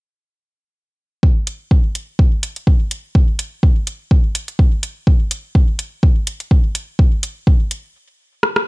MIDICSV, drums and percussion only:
0, 0, Header, 1, 2, 480
1, 0, Start_track
1, 0, Tempo, 480000
1, 1231, Time_signature, 4, 2, 24, 8
1, 8677, End_track
2, 0, Start_track
2, 0, Title_t, "Drums"
2, 1230, Note_on_c, 9, 36, 105
2, 1330, Note_off_c, 9, 36, 0
2, 1471, Note_on_c, 9, 42, 75
2, 1571, Note_off_c, 9, 42, 0
2, 1710, Note_on_c, 9, 36, 98
2, 1810, Note_off_c, 9, 36, 0
2, 1951, Note_on_c, 9, 42, 64
2, 2051, Note_off_c, 9, 42, 0
2, 2190, Note_on_c, 9, 36, 110
2, 2290, Note_off_c, 9, 36, 0
2, 2430, Note_on_c, 9, 42, 80
2, 2530, Note_off_c, 9, 42, 0
2, 2562, Note_on_c, 9, 42, 30
2, 2662, Note_off_c, 9, 42, 0
2, 2670, Note_on_c, 9, 36, 99
2, 2770, Note_off_c, 9, 36, 0
2, 2911, Note_on_c, 9, 42, 69
2, 3011, Note_off_c, 9, 42, 0
2, 3150, Note_on_c, 9, 36, 113
2, 3250, Note_off_c, 9, 36, 0
2, 3390, Note_on_c, 9, 42, 81
2, 3490, Note_off_c, 9, 42, 0
2, 3630, Note_on_c, 9, 36, 106
2, 3730, Note_off_c, 9, 36, 0
2, 3871, Note_on_c, 9, 42, 66
2, 3971, Note_off_c, 9, 42, 0
2, 4110, Note_on_c, 9, 36, 112
2, 4210, Note_off_c, 9, 36, 0
2, 4350, Note_on_c, 9, 42, 83
2, 4450, Note_off_c, 9, 42, 0
2, 4481, Note_on_c, 9, 42, 33
2, 4581, Note_off_c, 9, 42, 0
2, 4590, Note_on_c, 9, 36, 102
2, 4690, Note_off_c, 9, 36, 0
2, 4830, Note_on_c, 9, 42, 73
2, 4930, Note_off_c, 9, 42, 0
2, 5070, Note_on_c, 9, 36, 114
2, 5170, Note_off_c, 9, 36, 0
2, 5310, Note_on_c, 9, 42, 84
2, 5410, Note_off_c, 9, 42, 0
2, 5550, Note_on_c, 9, 36, 104
2, 5650, Note_off_c, 9, 36, 0
2, 5790, Note_on_c, 9, 42, 69
2, 5890, Note_off_c, 9, 42, 0
2, 6030, Note_on_c, 9, 36, 115
2, 6130, Note_off_c, 9, 36, 0
2, 6270, Note_on_c, 9, 42, 86
2, 6370, Note_off_c, 9, 42, 0
2, 6402, Note_on_c, 9, 42, 33
2, 6502, Note_off_c, 9, 42, 0
2, 6510, Note_on_c, 9, 36, 106
2, 6610, Note_off_c, 9, 36, 0
2, 6750, Note_on_c, 9, 42, 72
2, 6850, Note_off_c, 9, 42, 0
2, 6990, Note_on_c, 9, 36, 113
2, 7090, Note_off_c, 9, 36, 0
2, 7230, Note_on_c, 9, 42, 82
2, 7330, Note_off_c, 9, 42, 0
2, 7470, Note_on_c, 9, 36, 107
2, 7570, Note_off_c, 9, 36, 0
2, 7710, Note_on_c, 9, 42, 69
2, 7810, Note_off_c, 9, 42, 0
2, 8431, Note_on_c, 9, 37, 57
2, 8531, Note_off_c, 9, 37, 0
2, 8562, Note_on_c, 9, 37, 62
2, 8662, Note_off_c, 9, 37, 0
2, 8677, End_track
0, 0, End_of_file